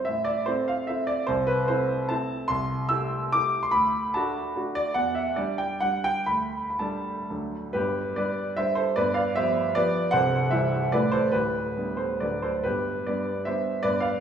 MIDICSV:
0, 0, Header, 1, 2, 480
1, 0, Start_track
1, 0, Key_signature, 1, "major"
1, 0, Tempo, 409277
1, 61, Time_signature, 3, 2, 24, 8
1, 6303, Tempo, 453515
1, 7263, Tempo, 508475
1, 8223, Tempo, 438917
1, 9183, Tempo, 390625
1, 12063, Tempo, 407056
1, 13023, Tempo, 431344
1, 14943, Tempo, 387097
1, 16359, End_track
2, 0, Start_track
2, 0, Title_t, "Grand piano"
2, 0, Program_c, 0, 0
2, 57, Note_on_c, 0, 76, 96
2, 78, Note_on_c, 0, 33, 60
2, 261, Control_c, 0, 64, 127
2, 288, Note_on_c, 0, 74, 100
2, 296, Note_off_c, 0, 76, 0
2, 538, Note_on_c, 0, 72, 94
2, 544, Note_off_c, 0, 33, 0
2, 545, Note_off_c, 0, 74, 0
2, 552, Note_on_c, 0, 57, 58
2, 556, Note_on_c, 0, 60, 58
2, 560, Note_on_c, 0, 64, 58
2, 570, Control_c, 0, 64, 0
2, 795, Note_on_c, 0, 77, 88
2, 799, Note_off_c, 0, 72, 0
2, 999, Note_off_c, 0, 57, 0
2, 1001, Note_off_c, 0, 60, 0
2, 1003, Note_off_c, 0, 64, 0
2, 1022, Note_on_c, 0, 76, 89
2, 1035, Note_on_c, 0, 57, 51
2, 1040, Note_off_c, 0, 77, 0
2, 1045, Note_on_c, 0, 60, 52
2, 1052, Note_on_c, 0, 64, 52
2, 1253, Note_on_c, 0, 74, 96
2, 1265, Note_off_c, 0, 76, 0
2, 1455, Note_off_c, 0, 57, 0
2, 1461, Note_off_c, 0, 60, 0
2, 1464, Note_off_c, 0, 64, 0
2, 1485, Note_on_c, 0, 72, 102
2, 1495, Note_off_c, 0, 74, 0
2, 1504, Note_on_c, 0, 36, 76
2, 1721, Note_on_c, 0, 71, 99
2, 1729, Note_off_c, 0, 72, 0
2, 1735, Control_c, 0, 64, 127
2, 1969, Note_off_c, 0, 36, 0
2, 1969, Note_on_c, 0, 72, 99
2, 1975, Note_off_c, 0, 71, 0
2, 1981, Note_on_c, 0, 57, 57
2, 1987, Note_on_c, 0, 60, 55
2, 1992, Note_on_c, 0, 64, 67
2, 2421, Note_off_c, 0, 57, 0
2, 2424, Note_off_c, 0, 60, 0
2, 2426, Note_off_c, 0, 64, 0
2, 2447, Note_on_c, 0, 81, 101
2, 2462, Note_off_c, 0, 72, 0
2, 2468, Note_on_c, 0, 57, 52
2, 2471, Note_on_c, 0, 60, 56
2, 2472, Note_on_c, 0, 64, 65
2, 2479, Control_c, 0, 64, 0
2, 2881, Note_off_c, 0, 57, 0
2, 2882, Note_off_c, 0, 60, 0
2, 2883, Note_off_c, 0, 64, 0
2, 2906, Note_on_c, 0, 84, 121
2, 2916, Note_off_c, 0, 81, 0
2, 2929, Note_on_c, 0, 36, 71
2, 3134, Control_c, 0, 64, 127
2, 3386, Note_on_c, 0, 88, 112
2, 3400, Note_off_c, 0, 36, 0
2, 3401, Note_on_c, 0, 64, 63
2, 3403, Note_off_c, 0, 84, 0
2, 3406, Note_on_c, 0, 57, 60
2, 3418, Note_on_c, 0, 67, 72
2, 3862, Note_off_c, 0, 64, 0
2, 3864, Note_off_c, 0, 57, 0
2, 3870, Note_off_c, 0, 67, 0
2, 3899, Note_on_c, 0, 86, 118
2, 3901, Note_off_c, 0, 88, 0
2, 3909, Note_on_c, 0, 57, 55
2, 3916, Note_on_c, 0, 67, 58
2, 3920, Note_on_c, 0, 64, 57
2, 3929, Control_c, 0, 64, 0
2, 4254, Note_on_c, 0, 84, 95
2, 4262, Note_off_c, 0, 86, 0
2, 4336, Note_off_c, 0, 57, 0
2, 4339, Note_off_c, 0, 67, 0
2, 4341, Note_off_c, 0, 64, 0
2, 4355, Note_on_c, 0, 83, 111
2, 4369, Note_on_c, 0, 38, 70
2, 4377, Note_off_c, 0, 84, 0
2, 4602, Control_c, 0, 64, 127
2, 4841, Note_off_c, 0, 38, 0
2, 4849, Note_off_c, 0, 83, 0
2, 4856, Note_on_c, 0, 81, 94
2, 4869, Note_on_c, 0, 57, 64
2, 4871, Note_on_c, 0, 62, 63
2, 4879, Note_on_c, 0, 66, 68
2, 5301, Note_off_c, 0, 57, 0
2, 5302, Note_off_c, 0, 62, 0
2, 5306, Note_off_c, 0, 66, 0
2, 5342, Note_off_c, 0, 81, 0
2, 5343, Note_on_c, 0, 57, 57
2, 5349, Note_on_c, 0, 62, 57
2, 5354, Control_c, 0, 64, 0
2, 5359, Note_on_c, 0, 66, 59
2, 5574, Note_on_c, 0, 74, 111
2, 5760, Note_off_c, 0, 57, 0
2, 5763, Note_off_c, 0, 62, 0
2, 5769, Note_off_c, 0, 66, 0
2, 5797, Note_on_c, 0, 78, 104
2, 5806, Note_off_c, 0, 74, 0
2, 5807, Note_on_c, 0, 40, 70
2, 6015, Control_c, 0, 64, 127
2, 6037, Note_on_c, 0, 76, 83
2, 6042, Note_off_c, 0, 78, 0
2, 6288, Note_off_c, 0, 40, 0
2, 6290, Note_on_c, 0, 74, 91
2, 6298, Note_off_c, 0, 76, 0
2, 6305, Note_on_c, 0, 55, 59
2, 6305, Note_on_c, 0, 62, 55
2, 6316, Note_on_c, 0, 67, 63
2, 6321, Control_c, 0, 64, 0
2, 6522, Note_on_c, 0, 79, 95
2, 6534, Note_off_c, 0, 74, 0
2, 6734, Note_off_c, 0, 55, 0
2, 6734, Note_off_c, 0, 62, 0
2, 6739, Note_off_c, 0, 67, 0
2, 6758, Note_on_c, 0, 78, 102
2, 6766, Note_off_c, 0, 79, 0
2, 6772, Note_on_c, 0, 62, 51
2, 6775, Note_on_c, 0, 55, 49
2, 6781, Note_on_c, 0, 67, 57
2, 7006, Note_off_c, 0, 78, 0
2, 7009, Note_on_c, 0, 79, 110
2, 7218, Note_off_c, 0, 62, 0
2, 7220, Note_off_c, 0, 55, 0
2, 7223, Note_off_c, 0, 67, 0
2, 7244, Note_on_c, 0, 83, 94
2, 7253, Note_on_c, 0, 38, 61
2, 7260, Note_off_c, 0, 79, 0
2, 7494, Control_c, 0, 64, 127
2, 7646, Note_off_c, 0, 83, 0
2, 7660, Note_on_c, 0, 83, 66
2, 7727, Note_off_c, 0, 38, 0
2, 7744, Note_on_c, 0, 81, 84
2, 7747, Note_off_c, 0, 83, 0
2, 7751, Note_on_c, 0, 55, 58
2, 7754, Note_on_c, 0, 62, 56
2, 7760, Note_on_c, 0, 69, 57
2, 8188, Note_off_c, 0, 55, 0
2, 8189, Note_off_c, 0, 62, 0
2, 8192, Note_off_c, 0, 69, 0
2, 8222, Note_off_c, 0, 81, 0
2, 8223, Note_on_c, 0, 38, 62
2, 8226, Note_on_c, 0, 54, 42
2, 8234, Note_on_c, 0, 62, 48
2, 8236, Control_c, 0, 64, 0
2, 8238, Note_on_c, 0, 69, 51
2, 8471, Control_c, 0, 64, 127
2, 8680, Note_off_c, 0, 54, 0
2, 8685, Note_off_c, 0, 62, 0
2, 8686, Note_off_c, 0, 69, 0
2, 8695, Note_on_c, 0, 71, 92
2, 8708, Note_off_c, 0, 38, 0
2, 8709, Note_on_c, 0, 43, 62
2, 8709, Note_on_c, 0, 67, 81
2, 8714, Note_on_c, 0, 31, 53
2, 8738, Control_c, 0, 64, 0
2, 8939, Control_c, 0, 64, 127
2, 9144, Note_off_c, 0, 67, 0
2, 9162, Note_off_c, 0, 43, 0
2, 9162, Note_off_c, 0, 71, 0
2, 9165, Note_off_c, 0, 31, 0
2, 9168, Note_on_c, 0, 74, 91
2, 9176, Note_on_c, 0, 55, 49
2, 9179, Note_on_c, 0, 62, 41
2, 9179, Note_on_c, 0, 71, 75
2, 9188, Note_on_c, 0, 67, 53
2, 9202, Control_c, 0, 64, 0
2, 9633, Note_off_c, 0, 55, 0
2, 9635, Note_off_c, 0, 62, 0
2, 9639, Note_off_c, 0, 67, 0
2, 9648, Note_off_c, 0, 71, 0
2, 9661, Note_on_c, 0, 76, 104
2, 9675, Note_on_c, 0, 72, 77
2, 9677, Note_off_c, 0, 74, 0
2, 9678, Note_on_c, 0, 55, 45
2, 9680, Note_on_c, 0, 62, 48
2, 9681, Note_on_c, 0, 67, 54
2, 9874, Note_off_c, 0, 72, 0
2, 9893, Note_on_c, 0, 72, 100
2, 9906, Note_off_c, 0, 76, 0
2, 9914, Note_on_c, 0, 69, 75
2, 10099, Note_off_c, 0, 55, 0
2, 10100, Note_off_c, 0, 62, 0
2, 10100, Note_off_c, 0, 67, 0
2, 10131, Note_off_c, 0, 69, 0
2, 10136, Note_off_c, 0, 72, 0
2, 10144, Note_on_c, 0, 74, 105
2, 10153, Note_on_c, 0, 43, 63
2, 10154, Note_on_c, 0, 71, 90
2, 10159, Note_on_c, 0, 31, 63
2, 10361, Note_off_c, 0, 74, 0
2, 10369, Note_on_c, 0, 77, 100
2, 10375, Note_off_c, 0, 71, 0
2, 10380, Note_on_c, 0, 74, 78
2, 10382, Control_c, 0, 64, 127
2, 10619, Note_off_c, 0, 74, 0
2, 10629, Note_off_c, 0, 43, 0
2, 10631, Note_on_c, 0, 76, 110
2, 10632, Note_off_c, 0, 31, 0
2, 10632, Note_off_c, 0, 77, 0
2, 10645, Note_on_c, 0, 53, 45
2, 10647, Note_on_c, 0, 72, 83
2, 10648, Note_on_c, 0, 59, 49
2, 10650, Note_on_c, 0, 67, 56
2, 11082, Note_off_c, 0, 53, 0
2, 11083, Note_off_c, 0, 59, 0
2, 11084, Note_off_c, 0, 67, 0
2, 11098, Note_off_c, 0, 72, 0
2, 11117, Note_on_c, 0, 74, 118
2, 11123, Note_off_c, 0, 76, 0
2, 11131, Note_on_c, 0, 71, 78
2, 11133, Note_on_c, 0, 53, 60
2, 11133, Note_on_c, 0, 59, 57
2, 11140, Control_c, 0, 64, 0
2, 11145, Note_on_c, 0, 67, 59
2, 11537, Note_off_c, 0, 53, 0
2, 11538, Note_off_c, 0, 59, 0
2, 11544, Note_off_c, 0, 67, 0
2, 11550, Note_off_c, 0, 71, 0
2, 11559, Note_on_c, 0, 78, 127
2, 11574, Note_off_c, 0, 74, 0
2, 11582, Note_on_c, 0, 72, 93
2, 11584, Note_on_c, 0, 24, 75
2, 11584, Note_on_c, 0, 36, 69
2, 11805, Control_c, 0, 64, 127
2, 12030, Note_off_c, 0, 72, 0
2, 12045, Note_on_c, 0, 76, 96
2, 12050, Note_off_c, 0, 24, 0
2, 12050, Note_off_c, 0, 36, 0
2, 12052, Note_off_c, 0, 78, 0
2, 12060, Note_on_c, 0, 52, 57
2, 12065, Note_on_c, 0, 72, 67
2, 12069, Note_on_c, 0, 55, 57
2, 12072, Note_on_c, 0, 64, 62
2, 12499, Note_off_c, 0, 52, 0
2, 12503, Note_off_c, 0, 55, 0
2, 12505, Note_off_c, 0, 64, 0
2, 12515, Note_off_c, 0, 72, 0
2, 12538, Note_on_c, 0, 74, 105
2, 12539, Note_off_c, 0, 76, 0
2, 12547, Note_on_c, 0, 71, 79
2, 12550, Note_on_c, 0, 33, 70
2, 12550, Note_on_c, 0, 45, 68
2, 12551, Note_on_c, 0, 52, 51
2, 12554, Note_on_c, 0, 57, 52
2, 12560, Control_c, 0, 64, 0
2, 12563, Note_on_c, 0, 64, 54
2, 12761, Control_c, 0, 64, 127
2, 12766, Note_on_c, 0, 72, 108
2, 12767, Note_off_c, 0, 71, 0
2, 12779, Note_off_c, 0, 74, 0
2, 12783, Note_on_c, 0, 69, 78
2, 12977, Note_off_c, 0, 52, 0
2, 12979, Note_off_c, 0, 57, 0
2, 12984, Note_off_c, 0, 64, 0
2, 13002, Note_on_c, 0, 71, 98
2, 13006, Note_off_c, 0, 69, 0
2, 13010, Note_off_c, 0, 33, 0
2, 13010, Note_off_c, 0, 45, 0
2, 13012, Note_on_c, 0, 67, 66
2, 13013, Note_on_c, 0, 26, 56
2, 13014, Note_off_c, 0, 72, 0
2, 13014, Note_on_c, 0, 38, 62
2, 13032, Control_c, 0, 64, 0
2, 13238, Control_c, 0, 64, 127
2, 13484, Note_off_c, 0, 26, 0
2, 13484, Note_off_c, 0, 38, 0
2, 13502, Note_on_c, 0, 55, 42
2, 13506, Note_on_c, 0, 59, 43
2, 13510, Note_on_c, 0, 62, 43
2, 13706, Note_off_c, 0, 67, 0
2, 13730, Note_on_c, 0, 72, 80
2, 13746, Note_off_c, 0, 71, 0
2, 13747, Note_on_c, 0, 69, 53
2, 13958, Note_off_c, 0, 55, 0
2, 13960, Note_off_c, 0, 59, 0
2, 13962, Note_off_c, 0, 62, 0
2, 13980, Note_off_c, 0, 69, 0
2, 13989, Note_off_c, 0, 72, 0
2, 13991, Note_on_c, 0, 74, 76
2, 14002, Note_on_c, 0, 38, 52
2, 14003, Note_on_c, 0, 26, 47
2, 14006, Note_on_c, 0, 54, 39
2, 14006, Note_on_c, 0, 71, 61
2, 14009, Note_on_c, 0, 57, 38
2, 14016, Note_on_c, 0, 62, 38
2, 14020, Control_c, 0, 64, 0
2, 14224, Control_c, 0, 64, 127
2, 14231, Note_off_c, 0, 71, 0
2, 14236, Note_on_c, 0, 72, 81
2, 14241, Note_off_c, 0, 74, 0
2, 14246, Note_on_c, 0, 69, 64
2, 14439, Note_off_c, 0, 54, 0
2, 14441, Note_off_c, 0, 57, 0
2, 14444, Note_off_c, 0, 62, 0
2, 14465, Note_off_c, 0, 69, 0
2, 14468, Note_off_c, 0, 26, 0
2, 14468, Note_off_c, 0, 38, 0
2, 14471, Note_on_c, 0, 71, 91
2, 14477, Note_off_c, 0, 72, 0
2, 14485, Note_on_c, 0, 31, 48
2, 14487, Note_on_c, 0, 67, 67
2, 14488, Note_on_c, 0, 43, 54
2, 14493, Control_c, 0, 64, 0
2, 14707, Control_c, 0, 64, 127
2, 14913, Note_off_c, 0, 67, 0
2, 14931, Note_off_c, 0, 31, 0
2, 14932, Note_off_c, 0, 43, 0
2, 14938, Note_off_c, 0, 71, 0
2, 14950, Note_on_c, 0, 74, 80
2, 14965, Note_on_c, 0, 71, 61
2, 14966, Note_on_c, 0, 55, 45
2, 14970, Note_on_c, 0, 59, 41
2, 14978, Note_on_c, 0, 62, 45
2, 15401, Note_off_c, 0, 55, 0
2, 15403, Note_off_c, 0, 59, 0
2, 15408, Note_off_c, 0, 62, 0
2, 15415, Note_off_c, 0, 71, 0
2, 15431, Note_on_c, 0, 76, 91
2, 15442, Note_off_c, 0, 74, 0
2, 15446, Control_c, 0, 64, 0
2, 15449, Note_on_c, 0, 55, 43
2, 15451, Note_on_c, 0, 72, 72
2, 15452, Note_on_c, 0, 59, 42
2, 15456, Note_on_c, 0, 62, 51
2, 15857, Note_off_c, 0, 55, 0
2, 15859, Note_off_c, 0, 59, 0
2, 15862, Note_off_c, 0, 62, 0
2, 15872, Note_off_c, 0, 72, 0
2, 15894, Note_off_c, 0, 76, 0
2, 15894, Note_on_c, 0, 74, 111
2, 15900, Note_on_c, 0, 71, 79
2, 15901, Note_on_c, 0, 43, 58
2, 15908, Note_on_c, 0, 31, 60
2, 16108, Note_off_c, 0, 74, 0
2, 16109, Control_c, 0, 64, 127
2, 16115, Note_on_c, 0, 77, 99
2, 16117, Note_off_c, 0, 71, 0
2, 16126, Note_on_c, 0, 74, 75
2, 16359, Note_off_c, 0, 31, 0
2, 16359, Note_off_c, 0, 43, 0
2, 16359, Note_off_c, 0, 74, 0
2, 16359, Note_off_c, 0, 77, 0
2, 16359, End_track
0, 0, End_of_file